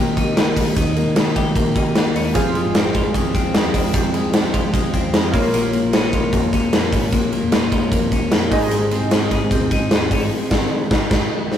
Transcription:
Already playing: picked electric bass A#1, clean electric guitar D#3 A#3 D#4 G4, synth keys D#4 G4 A#4 D#5
0.17 picked electric bass C2, clean electric guitar D#4, kick, ride
0.37 picked electric bass C#2, clean electric guitar A#3, snare, ride
0.57 picked electric bass C#2, clean electric guitar D#4, kick, open hi-hat, ride
0.77 picked electric bass D#2, clean electric guitar D#3, kick, hi-hat pedal, ride
0.96 clean electric guitar A#3, ride
1.06 picked electric bass C2
1.16 clean electric guitar C#4, snare, ride
1.26 clean electric guitar D#4
1.36 clean electric guitar G4, kick, ride
1.56 picked electric bass A#1, clean electric guitar A#3, kick, ride
1.76 clean electric guitar D#4, kick, ride
1.95 picked electric bass C#2, clean electric guitar A#3, snare, ride
2.16 picked electric bass D#2, clean electric guitar C#4, open hi-hat, ride
2.25 clean electric guitar D#4
2.34 picked electric bass F1, clean electric guitar F2, synth keys F4 G#4 C5 F5, kick, hi-hat pedal, ride
2.55 clean electric guitar G#3, ride
2.66 picked electric bass G#1
2.75 clean electric guitar C4, snare, ride
2.95 clean electric guitar F4, kick, ride
3.14 picked electric bass C2, clean electric guitar G#3, kick, ride
3.35 picked electric bass D#2, clean electric guitar C4, kick, ride
3.54 clean electric guitar G#3, snare, ride
3.74 clean electric guitar C4, kick, open hi-hat, ride
3.94 picked electric bass F2, clean electric guitar F2, kick, hi-hat pedal, ride
4.14 clean electric guitar G#3, ride
4.24 picked electric bass C#2
4.33 clean electric guitar C4, snare, ride
4.54 clean electric guitar F4, kick, ride
4.74 picked electric bass C2, clean electric guitar G#3, kick, ride
4.93 picked electric bass D#2, clean electric guitar C4, kick, ride
5.13 picked electric bass F2, clean electric guitar G#3, snare, ride
5.32 clean electric guitar A#2, synth keys F4 A#4 C#5 F5, kick, open hi-hat, ride
5.53 clean electric guitar A#2, hi-hat pedal, ride
5.73 clean electric guitar A#3, ride
5.83 picked electric bass A#1
5.93 clean electric guitar C#4, snare, ride
6.13 clean electric guitar F4, kick, ride
6.33 picked electric bass F2, clean electric guitar A#3, kick, ride
6.53 picked electric bass D#2, clean electric guitar C#4, kick, ride
6.73 picked electric bass F2, clean electric guitar A#3, snare, ride
6.92 picked electric bass G#1, clean electric guitar C#4, kick, open hi-hat, ride
7.12 picked electric bass A#1, clean electric guitar A#2, kick, hi-hat pedal, ride
7.32 clean electric guitar A#3, ride
7.43 picked electric bass F1
7.52 clean electric guitar C#4, snare, ride
7.72 clean electric guitar F4, kick, ride
7.92 picked electric bass F2, clean electric guitar A#3, kick, ride
8.12 picked electric bass D#2, clean electric guitar C#4, kick, ride
8.32 picked electric bass F2, clean electric guitar A#3, snare, ride
8.51 picked electric bass G#1, clean electric guitar G#2, synth keys D#4 G#4 C5 D#5, kick, open hi-hat, ride
8.71 clean electric guitar G#2, hi-hat pedal, ride
8.91 clean electric guitar C4, ride
9.01 picked electric bass C2
9.11 clean electric guitar D#4, snare, ride
9.31 clean electric guitar G#4, kick, ride
9.51 picked electric bass D#2, clean electric guitar C4, kick, ride
9.71 clean electric guitar D#4, kick, ride
9.91 picked electric bass D#2, clean electric guitar C4, snare, ride
10.11 picked electric bass G1, clean electric guitar C#4, kick, open hi-hat, ride
10.22 clean electric guitar D#4
10.51 picked electric bass G#1, kick, snare, crash
10.91 picked electric bass G#1, kick, snare
11.11 picked electric bass G#1, kick, snare, crash
11.52 snare

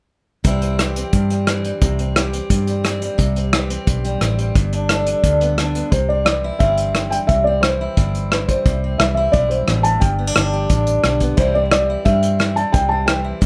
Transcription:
0.44 fingered electric bass C2, steel-string acoustic guitar C3 E3 G3 C4 E4, kick, closed hi-hat
0.62 steel-string acoustic guitar C4, closed hi-hat
0.79 steel-string acoustic guitar E3 G4, cross-stick, closed hi-hat
0.96 steel-string acoustic guitar C4, closed hi-hat
1.13 fingered electric bass G2, steel-string acoustic guitar G2, kick, closed hi-hat
1.30 steel-string acoustic guitar G3, closed hi-hat
1.47 steel-string acoustic guitar E3 C4, cross-stick, closed hi-hat
1.65 steel-string acoustic guitar G3, closed hi-hat
1.82 fingered electric bass C2, steel-string acoustic guitar C3, kick, closed hi-hat
1.99 steel-string acoustic guitar C4, closed hi-hat
2.16 steel-string acoustic guitar E3 G4, cross-stick, closed hi-hat
2.33 steel-string acoustic guitar C4, closed hi-hat
2.50 steel-string acoustic guitar G2, fingered electric bass G2, kick, closed hi-hat
2.67 steel-string acoustic guitar G3, closed hi-hat
2.84 steel-string acoustic guitar E3 C4, cross-stick, closed hi-hat
3.02 steel-string acoustic guitar G3, closed hi-hat
3.18 fingered electric bass C2, steel-string acoustic guitar C3, kick, closed hi-hat
3.36 steel-string acoustic guitar C4, closed hi-hat
3.53 steel-string acoustic guitar E3 G4, cross-stick, closed hi-hat
3.70 steel-string acoustic guitar C4, closed hi-hat
3.87 fingered electric bass B1, steel-string acoustic guitar G2, kick, closed hi-hat
4.05 steel-string acoustic guitar G3, closed hi-hat
4.21 fingered electric bass A1, steel-string acoustic guitar E3 C4, cross-stick, closed hi-hat
4.39 steel-string acoustic guitar G3, closed hi-hat
4.55 fingered electric bass G1, steel-string acoustic guitar G2, kick, closed hi-hat
4.73 steel-string acoustic guitar D4, closed hi-hat
4.89 steel-string acoustic guitar D3 A4, cross-stick, closed hi-hat
5.07 steel-string acoustic guitar D4, closed hi-hat
5.24 fingered electric bass D2, steel-string acoustic guitar G2, kick, closed hi-hat
5.41 steel-string acoustic guitar B3, closed hi-hat
5.58 steel-string acoustic guitar D3 D4, cross-stick, closed hi-hat
5.75 steel-string acoustic guitar B3, closed hi-hat
5.91 fingered electric bass C2, steel-string acoustic guitar C3, felt piano C5, kick, closed hi-hat
6.09 steel-string acoustic guitar C4, felt piano D5
6.25 steel-string acoustic guitar E3, felt piano D5, cross-stick, closed hi-hat
6.44 steel-string acoustic guitar E4
6.59 fingered electric bass G1, steel-string acoustic guitar G2 C4, felt piano E5, kick, closed hi-hat
6.78 closed hi-hat
6.95 steel-string acoustic guitar E3, cross-stick, closed hi-hat
7.10 steel-string acoustic guitar G3, felt piano G5, closed hi-hat
7.27 fingered electric bass C2, steel-string acoustic guitar C3, felt piano E5, kick, closed hi-hat
7.44 steel-string acoustic guitar C4, felt piano D5
7.61 steel-string acoustic guitar E3, felt piano C5, cross-stick, closed hi-hat
7.81 steel-string acoustic guitar E4
7.97 fingered electric bass G1, steel-string acoustic guitar G2 C4, kick, closed hi-hat
8.15 closed hi-hat
8.32 steel-string acoustic guitar E3, felt piano B4, cross-stick, closed hi-hat
8.48 steel-string acoustic guitar G3, felt piano C5, kick, closed hi-hat
8.66 fingered electric bass C2, steel-string acoustic guitar C3, kick, closed hi-hat
8.84 steel-string acoustic guitar C4
8.98 fingered electric bass C2, steel-string acoustic guitar E3, felt piano E5, cross-stick, closed hi-hat
9.14 steel-string acoustic guitar E4, felt piano E5
9.32 fingered electric bass B1, steel-string acoustic guitar G2 C4, felt piano D5, kick, closed hi-hat
9.49 felt piano C5, closed hi-hat
9.67 fingered electric bass A1, steel-string acoustic guitar B2, cross-stick, closed hi-hat
9.83 steel-string acoustic guitar A2, felt piano A5, closed hi-hat
10.00 fingered electric bass G1, steel-string acoustic guitar G2, felt piano G5, kick, closed hi-hat
10.19 steel-string acoustic guitar B3
10.27 steel-string acoustic guitar D4
10.36 fingered electric bass G1, steel-string acoustic guitar D3, cross-stick, closed hi-hat
10.53 steel-string acoustic guitar G4
10.70 fingered electric bass A1, steel-string acoustic guitar G2 D4, kick, closed hi-hat
10.87 closed hi-hat
11.04 fingered electric bass B1, steel-string acoustic guitar D3, cross-stick, closed hi-hat
11.20 steel-string acoustic guitar B3, kick, closed hi-hat
11.37 fingered electric bass C2, steel-string acoustic guitar C3 E3 G3 C4 E4, felt piano C5, kick, closed hi-hat
11.54 steel-string acoustic guitar C4, felt piano D5
11.71 steel-string acoustic guitar E3, felt piano D5, cross-stick, closed hi-hat
11.90 steel-string acoustic guitar E4
12.05 steel-string acoustic guitar G2 C4, fingered electric bass G2, felt piano E5, kick, closed hi-hat
12.23 closed hi-hat
12.39 steel-string acoustic guitar E3, cross-stick, closed hi-hat
12.56 steel-string acoustic guitar G3, felt piano A5, closed hi-hat
12.72 fingered electric bass C2, steel-string acoustic guitar C3, felt piano G5, kick, closed hi-hat
12.89 steel-string acoustic guitar C4, felt piano A5
13.06 steel-string acoustic guitar E3, felt piano G5, cross-stick, closed hi-hat
13.24 steel-string acoustic guitar E4
13.41 steel-string acoustic guitar G2 C4, fingered electric bass G2, kick, closed hi-hat

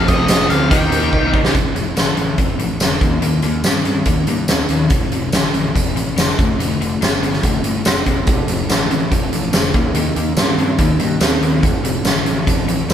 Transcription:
Already playing: overdriven electric guitar F2 C3 F3 A3 C4, string machine A3 C4 F4 A4
0.08 picked electric bass F1, honky-tonk piano F4 A4 C5, lead electric guitar D#5, kick, closed hi-hat, cowbell
0.28 picked electric bass F1, honky-tonk piano F4 A4 D#5, snare, closed hi-hat, tambourine, cowbell
0.49 picked electric bass D2, overdriven electric guitar F2 C3 F3 A3 C4, honky-tonk piano F4 A4 C5, lead electric guitar F5, closed hi-hat
0.70 picked electric bass D#2, overdriven electric guitar D#3 G3 A#3 D#4, string machine A#3 D#4 G4 A#4, honky-tonk piano G4 A#4 D#5, lead electric guitar G5, kick, closed hi-hat, cowbell
0.91 picked electric bass D#2, honky-tonk piano G4 A#4 C5, closed hi-hat, cowbell
1.11 picked electric bass C2, honky-tonk piano G4 A#4 D#5, kick, cowbell
1.32 overdriven electric guitar D#3 G3 A#3 D#4, honky-tonk piano G4 A#4 D#5, kick
1.45 snare
1.54 picked electric bass F1, overdriven electric guitar F2 C3, kick, closed hi-hat
1.75 picked electric bass F1, overdriven electric guitar F2 C3, closed hi-hat
1.96 picked electric bass A1, overdriven electric guitar F2 D3, snare, closed hi-hat, tambourine
2.17 picked electric bass A1, overdriven electric guitar F2 D3, closed hi-hat
2.38 picked electric bass F1, overdriven electric guitar F2 C3, kick, closed hi-hat
2.59 picked electric bass A1, overdriven electric guitar F2 C3, closed hi-hat
2.79 picked electric bass F1, overdriven electric guitar F2 D3, snare, closed hi-hat, tambourine
3.01 picked electric bass D#2, overdriven electric guitar D#3 A#3, kick, closed hi-hat
3.22 picked electric bass D#2, overdriven electric guitar D#3 A#3, closed hi-hat
3.42 picked electric bass D#2, overdriven electric guitar D#3 A#3, closed hi-hat
3.63 picked electric bass G2, overdriven electric guitar D#3 C4, snare, closed hi-hat, tambourine
3.84 picked electric bass G2, overdriven electric guitar D#3 C4, closed hi-hat
4.05 picked electric bass D#2, overdriven electric guitar D#3 A#3, kick, closed hi-hat
4.27 picked electric bass G2, overdriven electric guitar D#3 A#3, closed hi-hat
4.48 picked electric bass D#2, overdriven electric guitar D#3 C4, snare, closed hi-hat, tambourine
4.69 picked electric bass D#2, overdriven electric guitar D#3 C4, closed hi-hat
4.90 picked electric bass F1, overdriven electric guitar F2 C3, kick, closed hi-hat
5.12 picked electric bass F1, overdriven electric guitar F2 C3, closed hi-hat
5.32 picked electric bass A1, overdriven electric guitar F2 D3, snare, closed hi-hat, tambourine
5.53 picked electric bass A1, overdriven electric guitar F2 D3, closed hi-hat
5.75 picked electric bass F1, overdriven electric guitar F2 C3, kick, closed hi-hat
5.95 picked electric bass A1, overdriven electric guitar F2 C3, closed hi-hat
6.16 picked electric bass F1, overdriven electric guitar F2 D3, snare, closed hi-hat, tambourine
6.38 picked electric bass F1, overdriven electric guitar D3 A3, kick, closed hi-hat
6.58 picked electric bass F1, overdriven electric guitar D3 A3, closed hi-hat
6.79 picked electric bass F1, overdriven electric guitar D3 A3, closed hi-hat
7.01 picked electric bass G1, overdriven electric guitar D3 B3, snare, closed hi-hat, tambourine
7.21 picked electric bass G1, overdriven electric guitar D3 B3, closed hi-hat
7.33 snare
7.43 picked electric bass F1, overdriven electric guitar D3 A3, kick, closed hi-hat
7.64 picked electric bass G1, overdriven electric guitar D3 A3, closed hi-hat
7.85 picked electric bass F1, overdriven electric guitar D3 B3, snare, closed hi-hat, tambourine
8.06 picked electric bass F1, overdriven electric guitar D3 B3, kick, closed hi-hat
8.26 picked electric bass F1, overdriven electric guitar F2 C3, string machine A3 C4 F4 A4, kick, closed hi-hat
8.48 picked electric bass F1, overdriven electric guitar F2 C3, closed hi-hat
8.69 picked electric bass A1, overdriven electric guitar F2 D3, snare, closed hi-hat, tambourine
8.90 picked electric bass A1, overdriven electric guitar F2 D3, closed hi-hat
9.11 picked electric bass F1, overdriven electric guitar F2 C3, kick, closed hi-hat
9.33 picked electric bass A1, overdriven electric guitar F2 C3, closed hi-hat
9.53 picked electric bass F1, overdriven electric guitar F2 D3, snare, closed hi-hat, tambourine
9.73 picked electric bass D#2, overdriven electric guitar D#3 A#3, string machine B3 E4 G#4 B4, kick, closed hi-hat
9.88 string machine A#3 D#4 G4 A#4
9.94 picked electric bass D#2, overdriven electric guitar D#3 A#3, closed hi-hat
10.16 picked electric bass D#2, overdriven electric guitar D#3 A#3, closed hi-hat
10.37 picked electric bass G2, overdriven electric guitar D#3 C4, snare, closed hi-hat, tambourine
10.58 picked electric bass G2, overdriven electric guitar D#3 C4, closed hi-hat
10.78 picked electric bass D#2, overdriven electric guitar D#3 A#3, kick, closed hi-hat
10.99 picked electric bass G2, overdriven electric guitar D#3 A#3, closed hi-hat
11.21 picked electric bass D#2, overdriven electric guitar D#3 C4, snare, closed hi-hat, tambourine
11.41 picked electric bass D#2, overdriven electric guitar D#3 C4, closed hi-hat
11.63 picked electric bass F1, overdriven electric guitar F2 C3, string machine A3 C4 F4 A4, kick, closed hi-hat
11.82 picked electric bass F1, overdriven electric guitar F2 C3, closed hi-hat
12.04 picked electric bass A1, overdriven electric guitar F2 D3, snare, closed hi-hat, tambourine
12.24 picked electric bass A1, overdriven electric guitar F2 D3, closed hi-hat
12.47 picked electric bass F1, overdriven electric guitar F2 C3, kick, closed hi-hat
12.65 picked electric bass A1, overdriven electric guitar F2 C3, closed hi-hat
12.88 picked electric bass F1, overdriven electric guitar F2 D3, closed hi-hat, tambourine

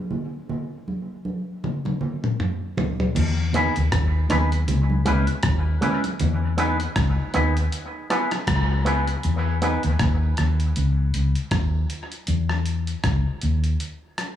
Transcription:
0.11 low conga
0.49 low conga
0.88 high conga
1.25 high conga
1.64 high tom, low conga
1.85 high tom, high conga
2.01 low conga
2.24 mid tom
2.40 mid tom, high conga
2.77 floor tom, high conga, low conga
3.00 floor tom, high conga
3.15 fingered electric bass E2, closed hi-hat, crash, low conga
3.53 clean electric guitar B3 D#4 G#4 B4, closed hi-hat, low conga
3.76 fingered electric bass D#2, closed hi-hat
3.92 fingered electric bass D#2, kick, cross-stick, closed hi-hat
4.29 fingered electric bass D#2, clean electric guitar B3 D#4 G#4 B4, cross-stick, closed hi-hat, high conga
4.52 closed hi-hat
4.68 fingered electric bass C#2, closed hi-hat, low conga
4.90 high conga
5.05 fingered electric bass C#2, clean electric guitar G#3 C#4 E4 B4, closed hi-hat, low conga
5.27 closed hi-hat
5.43 fingered electric bass D#2, kick, cross-stick, closed hi-hat
5.81 clean electric guitar G#3 C#4 E4 B4, closed hi-hat, low conga
6.04 closed hi-hat, high conga
6.19 fingered electric bass E2, closed hi-hat, low conga
6.57 clean electric guitar B3 D#4 G#4 B4, closed hi-hat
6.80 closed hi-hat
6.96 fingered electric bass C#2, kick, cross-stick, closed hi-hat
7.34 fingered electric bass D#2, clean electric guitar B3 D#4 G#4 B4, closed hi-hat
7.57 closed hi-hat
7.72 closed hi-hat
8.10 clean electric guitar B3 E4 G#4 B4, cross-stick, closed hi-hat
8.31 cross-stick, closed hi-hat
8.47 fingered electric bass C#2, kick, cross-stick, closed hi-hat
8.85 clean electric guitar B3 E4 G#4 B4, closed hi-hat
9.08 closed hi-hat
9.23 fingered electric bass E2, closed hi-hat
9.62 clean electric guitar B3 D#4 G#4 B4, closed hi-hat
9.83 fingered electric bass D#2, closed hi-hat
9.99 fingered electric bass D#2, kick, cross-stick, closed hi-hat
10.37 fingered electric bass D#2, cross-stick, closed hi-hat
10.60 closed hi-hat
10.76 fingered electric bass C#2, closed hi-hat
11.14 fingered electric bass C#2, closed hi-hat
11.35 closed hi-hat
11.51 fingered electric bass D#2, kick, cross-stick, closed hi-hat
11.90 closed hi-hat
12.12 closed hi-hat
12.27 fingered electric bass E2, closed hi-hat
12.49 cross-stick
12.66 closed hi-hat
12.87 closed hi-hat
13.04 fingered electric bass C#2, kick, cross-stick, closed hi-hat
13.42 fingered electric bass D#2, closed hi-hat
13.64 closed hi-hat
13.80 closed hi-hat
14.18 cross-stick, closed hi-hat

